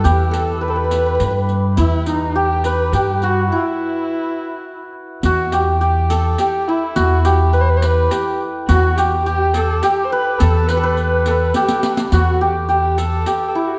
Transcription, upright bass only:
X:1
M:3/4
L:1/8
Q:1/4=104
K:none
V:1 name="Upright bass" clef=bass
E,,4 G,,2 | E,,4 G,,2 | z6 | E,,4 z2 |
E,,4 z2 | E,,4 z2 | E,,4 z2 | E,,4 z2 |]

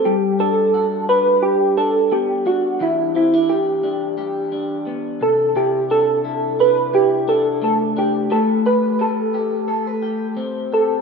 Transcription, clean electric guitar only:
X:1
M:4/4
L:1/16
Q:"Swing 16ths" 1/4=87
K:G
V:1 name="Clean electric guitar"
G,2 D2 F2 D4 D2 B,2 D2 | [E,G]2 C D G2 D2 G2 D2 B,2 C,2 | [C,E]2 D2 E2 D2 E2 D2 A,2 D2 | [A,B]2 G2 B2 G2 A B G2 C2 G2 |]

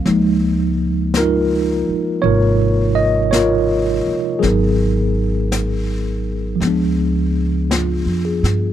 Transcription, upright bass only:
X:1
M:4/4
L:1/8
Q:"Swing" 1/4=55
K:Db
V:1 name="Upright bass" clef=bass
D,,3 z A,,,3 z | A,,,4 D,,2- (3D,, F,, =G,, |]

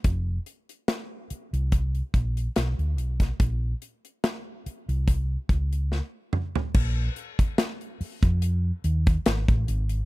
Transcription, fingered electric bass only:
X:1
M:4/4
L:1/16
Q:"Swing 16ths" 1/4=72
K:Bbdor
V:1 name="Fingered electric bass" clef=bass
F,,,2 z4 z C,,3 B,,,2 =B,,, =D,, B,,,2 | B,,,2 z4 z C,,3 D,,3 z3 | B,,,2 z4 z F,,3 E,,2 A,,, =A,,, _A,,,2 |]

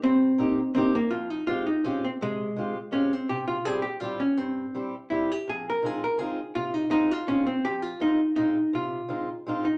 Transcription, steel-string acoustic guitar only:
X:1
M:3/4
L:1/8
Q:1/4=166
K:Cm
V:1 name="Steel-string acoustic guitar"
G,,2 [B,CEG] z [B,CEG] z | [K:Fm] F,,2 [A,CFG] z [A,CFG] z | C,2 [A,CFG] z [A,CFG] z | C,2 [G,C=EG] z [G,CEG] z |
G,,2 [G,C=EG] z [G,CEG] z | F,,2 [A,CEF] z [A,CEF] z | C,2 [A,CEF] z [A,CEF] z | F,,2 [A,CEF] z [A,CEF] z |
C,2 [A,CEF] z [A,CEF] z |]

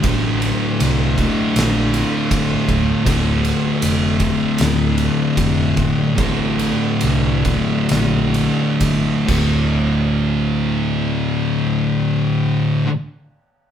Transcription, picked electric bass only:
X:1
M:4/4
L:1/8
Q:1/4=73
K:Cdor
V:1 name="Picked electric bass" clef=bass
A,,,2 C,,2 B,,,2 G,,, D,,, | D,,,2 F,,,2 D,,,2 F,,,2 | A,,,2 C,,2 B,,,2 G,,, D,,,- | D,,,8 |]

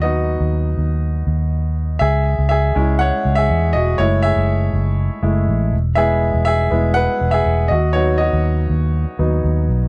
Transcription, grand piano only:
X:1
M:4/4
L:1/16
Q:1/4=121
K:C#m
V:1 name="Grand piano"
[Fd]12- [Fd]2 z2 | [Ge]4 [Ge]4 [cf]3 [Ge]3 [Fd]2 | c2 [Ge]12 z2 | [Ge]4 [Ge]4 [Bf]3 [Ge]3 [Fd]2 |
[Fc]2 [Fd]12 z2 |]
V:2 name="Grand piano"
[F,B,D]16 | z6 [G,CE]8- [G,CE]2 | [G,A,E]6 z4 [G,A,E]2 z4 | [G,B,E]6 [G,B,E]2 z8 |
[F,B,D]8- [F,B,D]2 [F,B,D]2 z4 |]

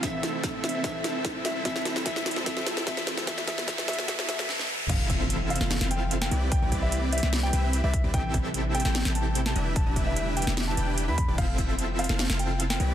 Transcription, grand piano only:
X:1
M:4/4
L:1/16
Q:1/4=148
K:Am
V:1 name="Grand piano"
e2 z4 e2 e2 z4 e2 | e2 z2 e2 z2 e2 z2 e2 z2 | e2 e2 e2 e2 e2 e2 z4 | f2 z4 f2 z2 g2 z g2 z |
g2 z e2 z e2 z g2 z2 e2 z | g2 z4 g2 z2 a2 z a2 z | a2 z e2 z g2 z a2 z2 b2 z | f2 z4 f2 z2 g2 z g2 z |]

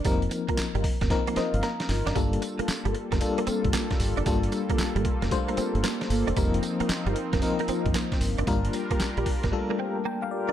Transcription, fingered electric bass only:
X:1
M:4/4
L:1/16
Q:"Swing 16ths" 1/4=114
K:Gm
V:1 name="Fingered electric bass" clef=bass
F,,,2 z3 G,,, z F,,, z3 G,,, z2 G,,, ^F,,, | G,,,2 z3 G,,, z F,,, z3 G,,, z2 G,,, ^F,,, | G,,,2 z3 G,,, z F,,, z3 G,,, z2 G,,, =E,,, | F,,,2 z3 G,,, z F,,, z3 G,,, z2 G,,, ^F,,, |
G,,,2 z3 B,,, z G,,, z8 |]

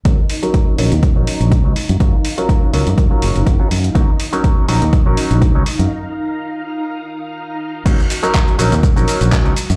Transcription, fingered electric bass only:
X:1
M:4/4
L:1/16
Q:"Swing 16ths" 1/4=123
K:Ebm
V:1 name="Fingered electric bass" clef=bass
E,, z4 z B,,, E,, z B,,, z B,,,2 D,, z G,, | G,, z4 z D,, G,, G,, z G,,, G,,, G,,, z G,, z | E,, z4 z B,,, E,, z B,,, z B,,,2 D,, z G,, | z16 |
E,, z4 z B,,, E,, z B,,, z B,,,2 D,, z G,, |]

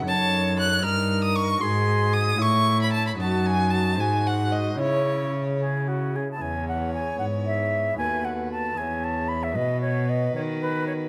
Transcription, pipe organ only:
X:1
M:6/8
L:1/8
Q:3/8=76
K:C#m
V:1 name="Pipe organ"
[DAc]3 [D^Ad]3 | [FGd]3 [Ec]3 | [DFd]3 [G,DF^B]3 | [CEG]6 |
[K:E] [B,EG]6 | [B,FA]3 [B,EG]3 | [B,FB]6 |]
V:2 name="Pipe organ" clef=bass
F,,3 =G,,3 | G,,3 A,,3 | F,,3 G,,3 | C,4- C, z |
[K:E] E,,3 G,,3 | D,,3 E,,3 | B,,3 D,3 |]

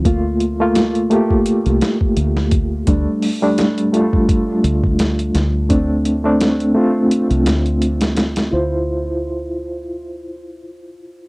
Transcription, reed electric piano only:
X:1
M:4/4
L:1/16
Q:"Swing 16ths" 1/4=85
K:Dm
V:1 name="Reed electric piano"
[A,B,F]3 [A,B,F]3 [A,B,G]8- [A,B,G]2 | [G,A,D]3 [G,A,D]3 [G,A,F]8- [G,A,F]2 | [A,CD]3 [A,CD]3 [A,CF]8- [A,CF]2 | [EFc]16 |]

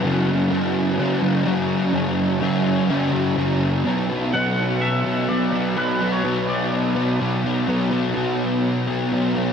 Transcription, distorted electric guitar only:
X:1
M:4/4
L:1/8
Q:1/4=126
K:F#phr
V:1 name="Distorted electric guitar" clef=bass
[F,,C,F,]2 [F,,C,F,]2 [F,,C,F,] [C,F,] [F,,C,F,]2 | [F,,C,F,]2 [F,,C,F,]2 [F,,C,F,] [C,F,] [F,,C,F,]2 | [K:Bm] [B,,F,B,] [F,B,] [B,,F,B,]3 [F,B,] [B,,F,B,] [F,B,] | [B,,F,B,] [F,B,] [B,,F,B,]3 [F,B,] [B,,F,B,] [F,B,] |
[B,,F,B,] [F,B,] [B,,F,B,]3 [F,B,] [B,,F,B,] [F,B,] |]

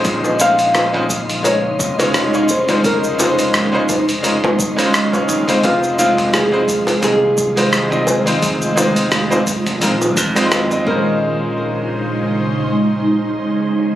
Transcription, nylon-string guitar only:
X:1
M:4/4
L:1/8
Q:"Swing 16ths" 1/4=86
K:Bbm
V:1 name="Nylon-string guitar"
z f3 d3 c | B c6 z | F F A2 A4- | A6 z B- |
B8 |]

